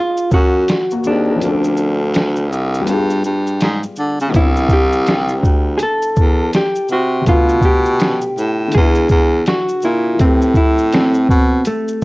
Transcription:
Already playing: G#3 A#3 F4 G#4
0.17 shaker
0.31 F#2 F#4, kick, shaker
0.68 snare, closed hi-hat, shaker
0.91 A#3 F#4, shaker
1.04 D#2 C4 D4 G#4, shaker
1.31 C#4 A#4
1.36 F3
1.40 D2 C4, closed hi-hat, shaker
1.44 D4
1.49 A4
1.64 shaker
1.77 shaker
2.14 snare, closed hi-hat, shaker
2.36 shaker
2.52 C2, shaker
2.74 shaker
2.80 G3
2.85 B3, closed hi-hat, shaker
2.89 G2 F4
2.93 G#4
3.10 shaker
3.24 G2, shaker
3.47 shaker
3.61 G#2, snare, closed hi-hat, shaker
3.83 shaker
3.96 D3, shaker
4.20 C#3, shaker
4.27 D3
4.32 C2 B3, kick, closed hi-hat, shaker
4.36 C4 E4
4.40 D4
4.47 E4
4.56 shaker
4.69 kick, shaker
4.73 G4
4.92 shaker
5.07 snare, closed hi-hat, shaker
5.28 shaker
5.43 D2, kick, shaker
5.77 G#4, closed hi-hat, shaker
5.83 A4
6.02 shaker
6.16 E2, kick, shaker
6.53 G4, snare, closed hi-hat, shaker
6.75 shaker
6.88 C3, shaker
6.93 F#4
7.22 C3
7.26 B2 D3 A3 F4, kick, closed hi-hat, shaker
7.30 B3
7.34 F4
7.49 shaker
7.61 G4, kick, shaker
7.85 shaker
8.00 snare, closed hi-hat, shaker
8.21 shaker
8.38 A2, shaker
8.68 D3
8.72 G#3 G#4, kick, closed hi-hat, shaker
8.76 E2 B4
8.80 E4
8.95 shaker
9.09 E2, kick, shaker
9.46 F#4, snare, closed hi-hat, shaker
9.68 shaker
9.82 A#2 E4, shaker
10.14 E3
10.19 A2 A3 C4, kick, closed hi-hat, shaker
10.23 B4
10.27 G4
10.42 shaker
10.54 E4, kick, shaker
10.78 shaker
10.93 C4, snare, closed hi-hat, shaker
11.14 shaker
11.29 B2, kick, shaker
11.65 A3, closed hi-hat, shaker
11.88 shaker

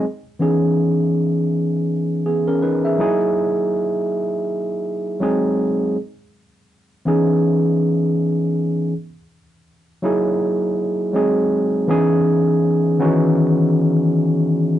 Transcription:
0.39 E3 B3 C#4 D#4 G#4
2.26 B3 G#4
2.48 C#4 A#4
2.62 D#4 B4
2.85 G#4 E5
2.98 F#3 A#3 D#4 E4 G#4
5.20 F#3 G#3 C4 D#4 G#4
7.05 E3 B3 C#4 D#4 G#4
10.02 F#3 A#3 D#4 E4 G#4
11.13 F#3 G#3 C4 D#4 G#4
11.88 E3 B3 C#4 D#4 G#4
12.99 D#3 B3 C#4 D#4 F#4
13.05 E3

